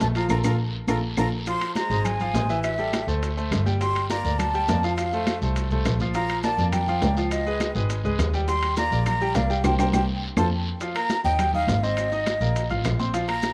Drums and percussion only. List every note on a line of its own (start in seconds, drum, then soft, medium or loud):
0.00 high bongo soft
0.00 low bongo medium
0.00 high conga medium
0.00 high timbale medium
0.00 low timbale medium
0.00 short guiro medium
0.00 maracas medium
0.15 high bongo soft
0.15 high timbale medium
0.15 short guiro medium
0.15 maracas soft
0.29 low bongo medium
0.29 high conga medium
0.29 high timbale medium
0.29 long guiro medium
0.29 claves medium
0.29 maracas medium
0.44 low bongo loud
0.44 high conga medium
0.44 high timbale medium
0.44 long guiro medium
0.44 claves medium
0.44 maracas medium
0.88 low bongo medium
0.88 high conga medium
0.88 high timbale loud
0.88 long guiro medium
0.88 claves medium
0.88 maracas medium
1.17 low bongo loud
1.17 high conga medium
1.17 high timbale medium
1.17 long guiro medium
1.17 claves medium
1.17 maracas medium
1.46 high bongo medium
1.46 high conga soft
1.46 high timbale medium
1.46 long guiro medium
1.46 maracas medium
1.61 high bongo soft
1.61 high conga soft
1.61 high timbale medium
1.61 claves medium
1.61 maracas soft
1.75 high bongo medium
1.75 high conga medium
1.75 high timbale medium
1.75 low timbale medium
1.75 short guiro medium
1.75 maracas medium
1.90 high bongo soft
1.90 high conga soft
1.90 short guiro medium
1.90 maracas soft
2.05 high bongo medium
2.05 high conga soft
2.05 low conga medium
2.05 high timbale medium
2.05 long guiro medium
2.05 claves medium
2.05 maracas medium
2.20 high conga soft
2.20 low conga medium
2.20 maracas soft
2.34 high bongo soft
2.34 low bongo medium
2.34 high conga medium
2.34 high timbale medium
2.34 low timbale medium
2.34 short guiro medium
2.34 maracas medium
2.49 high conga soft
2.49 short guiro medium
2.49 maracas soft
2.64 high bongo medium
2.64 high conga soft
2.64 high timbale medium
2.64 long guiro medium
2.64 claves medium
2.64 maracas medium
2.78 high bongo soft
2.78 high conga soft
2.78 maracas soft
2.93 high bongo medium
2.93 high conga medium
2.93 high timbale loud
2.93 low timbale medium
2.93 short guiro medium
2.93 claves medium
2.93 maracas medium
3.08 high bongo soft
3.08 high conga soft
3.08 short guiro medium
3.08 maracas soft
3.22 high bongo medium
3.22 high conga soft
3.22 high timbale medium
3.22 long guiro medium
3.22 maracas medium
3.37 high conga soft
3.37 maracas soft
3.52 high bongo soft
3.52 low bongo medium
3.52 high conga soft
3.52 high timbale medium
3.52 low timbale medium
3.52 short guiro medium
3.52 claves medium
3.52 maracas medium
3.66 high conga medium
3.66 short guiro medium
3.66 maracas soft
3.81 high bongo medium
3.81 high conga soft
3.81 high timbale medium
3.81 long guiro medium
3.81 maracas medium
3.95 high bongo soft
3.95 high conga soft
3.95 high timbale medium
3.95 claves medium
3.95 maracas soft
4.10 high bongo medium
4.10 high conga medium
4.10 high timbale medium
4.10 low timbale medium
4.10 short guiro medium
4.10 maracas medium
4.24 high bongo soft
4.24 high conga soft
4.24 short guiro medium
4.24 maracas soft
4.39 high bongo medium
4.39 high conga soft
4.39 low conga medium
4.39 high timbale medium
4.39 long guiro medium
4.39 claves medium
4.39 maracas medium
4.54 high conga soft
4.54 maracas soft
4.68 high bongo soft
4.68 low bongo medium
4.68 high conga medium
4.68 high timbale medium
4.68 low timbale medium
4.68 short guiro medium
4.68 maracas medium
4.83 short guiro medium
4.83 maracas soft
4.98 high bongo medium
4.98 high conga soft
4.98 high timbale medium
4.98 long guiro medium
4.98 claves medium
4.98 maracas medium
5.12 high bongo soft
5.12 high conga soft
5.12 maracas soft
5.27 high bongo medium
5.27 high conga loud
5.27 high timbale medium
5.27 low timbale medium
5.27 short guiro medium
5.27 claves medium
5.27 maracas medium
5.42 high bongo soft
5.42 high conga soft
5.42 short guiro medium
5.42 maracas soft
5.56 high bongo medium
5.56 high conga soft
5.56 high timbale medium
5.56 long guiro medium
5.56 maracas medium
5.70 high conga soft
5.70 maracas soft
5.85 high bongo soft
5.85 low bongo medium
5.85 high conga soft
5.85 high timbale medium
5.85 low timbale medium
5.85 short guiro medium
5.85 claves medium
5.85 maracas medium
5.99 high conga medium
5.99 short guiro medium
5.99 maracas soft
6.14 high bongo medium
6.14 high conga soft
6.14 high timbale medium
6.14 long guiro medium
6.14 maracas medium
6.29 high bongo soft
6.29 high conga soft
6.29 high timbale medium
6.29 claves medium
6.29 maracas soft
6.43 high bongo medium
6.43 high conga medium
6.43 high timbale medium
6.43 low timbale medium
6.43 short guiro medium
6.43 maracas medium
6.58 high bongo soft
6.58 high conga soft
6.58 short guiro medium
6.58 maracas soft
6.72 high bongo medium
6.72 high conga soft
6.72 low conga medium
6.72 high timbale medium
6.72 long guiro medium
6.72 claves medium
6.72 maracas medium
6.87 high conga soft
6.87 low conga medium
6.87 maracas soft
7.02 high bongo soft
7.02 low bongo medium
7.02 high conga medium
7.02 high timbale medium
7.02 low timbale medium
7.02 short guiro medium
7.02 maracas medium
7.17 high conga soft
7.17 short guiro medium
7.17 maracas soft
7.31 high bongo medium
7.31 high conga soft
7.31 high timbale medium
7.31 long guiro medium
7.31 claves medium
7.31 maracas medium
7.46 high bongo soft
7.46 high conga soft
7.46 maracas soft
7.60 high bongo medium
7.60 high conga medium
7.60 high timbale medium
7.60 low timbale medium
7.60 short guiro medium
7.60 claves medium
7.60 maracas medium
7.75 high bongo soft
7.75 high conga soft
7.75 short guiro medium
7.75 maracas soft
7.90 high bongo medium
7.90 high conga soft
7.90 high timbale medium
7.90 long guiro medium
7.90 maracas medium
8.04 high conga soft
8.04 maracas soft
8.19 high bongo soft
8.19 low bongo medium
8.19 high conga soft
8.19 high timbale loud
8.19 low timbale medium
8.19 short guiro medium
8.19 claves medium
8.19 maracas medium
8.33 short guiro medium
8.33 maracas soft
8.48 high bongo medium
8.48 high conga soft
8.48 high timbale medium
8.48 long guiro medium
8.48 maracas medium
8.62 high bongo soft
8.62 high conga soft
8.62 high timbale loud
8.62 claves medium
8.62 maracas soft
8.76 high bongo medium
8.76 high conga loud
8.76 high timbale medium
8.76 low timbale medium
8.76 short guiro medium
8.76 maracas medium
8.92 high bongo soft
8.92 high conga soft
8.92 short guiro medium
8.92 maracas soft
9.06 high bongo medium
9.06 high conga soft
9.06 low conga medium
9.06 high timbale medium
9.06 long guiro medium
9.06 claves medium
9.06 maracas medium
9.21 high conga soft
9.21 maracas soft
9.35 high bongo soft
9.35 low bongo medium
9.35 high conga medium
9.35 high timbale medium
9.35 low timbale medium
9.35 short guiro medium
9.35 maracas medium
9.50 high conga soft
9.50 short guiro medium
9.50 maracas soft
9.64 high bongo loud
9.64 high conga loud
9.64 high timbale loud
9.64 long guiro loud
9.64 claves medium
9.64 maracas medium
9.79 high bongo loud
9.79 high conga medium
9.79 high timbale loud
9.79 long guiro loud
9.79 claves medium
9.79 maracas medium
9.93 high bongo medium
9.93 high conga medium
9.93 high timbale loud
9.93 long guiro loud
9.93 claves medium
9.93 maracas loud
10.37 high bongo loud
10.37 high conga loud
10.37 high timbale loud
10.37 long guiro loud
10.37 claves medium
10.37 maracas medium
10.80 high bongo medium
10.80 high conga soft
10.80 high timbale medium
10.80 long guiro medium
10.80 maracas medium
10.95 high bongo soft
10.95 high conga soft
10.95 high timbale loud
10.95 claves medium
10.95 maracas soft
11.10 high bongo medium
11.10 high conga medium
11.10 high timbale medium
11.10 low timbale medium
11.10 short guiro medium
11.10 maracas medium
11.24 high bongo soft
11.24 high conga soft
11.24 short guiro medium
11.24 maracas soft
11.39 high bongo medium
11.39 high conga soft
11.39 low conga medium
11.39 high timbale medium
11.39 long guiro medium
11.39 claves medium
11.39 maracas medium
11.53 high conga soft
11.53 low conga medium
11.53 maracas soft
11.68 high bongo soft
11.68 low bongo medium
11.68 high conga medium
11.68 high timbale medium
11.68 low timbale medium
11.68 short guiro medium
11.68 maracas medium
11.83 high conga soft
11.83 short guiro medium
11.83 maracas soft
11.97 high bongo medium
11.97 high conga soft
11.97 high timbale medium
11.97 long guiro medium
11.97 claves medium
11.97 maracas medium
12.12 high bongo soft
12.12 high conga soft
12.12 maracas soft
12.26 high bongo medium
12.26 high conga loud
12.26 high timbale medium
12.26 low timbale medium
12.26 short guiro medium
12.26 claves medium
12.26 maracas medium
12.41 high bongo soft
12.41 high conga soft
12.41 short guiro medium
12.41 maracas soft
12.56 high bongo medium
12.56 high conga soft
12.56 high timbale medium
12.56 long guiro medium
12.56 maracas medium
12.70 high conga soft
12.70 maracas soft
12.84 high bongo soft
12.84 low bongo medium
12.84 high conga soft
12.84 high timbale medium
12.84 low timbale medium
12.84 short guiro medium
12.84 claves medium
12.84 maracas medium
12.99 high conga medium
12.99 short guiro medium
12.99 maracas soft
13.14 high bongo medium
13.14 high conga soft
13.14 high timbale medium
13.14 long guiro medium
13.14 maracas medium
13.28 high bongo soft
13.28 high conga soft
13.28 high timbale loud
13.28 claves medium
13.28 maracas soft
13.42 high bongo medium
13.42 high conga medium
13.42 high timbale medium
13.42 low timbale medium
13.42 short guiro medium
13.42 maracas medium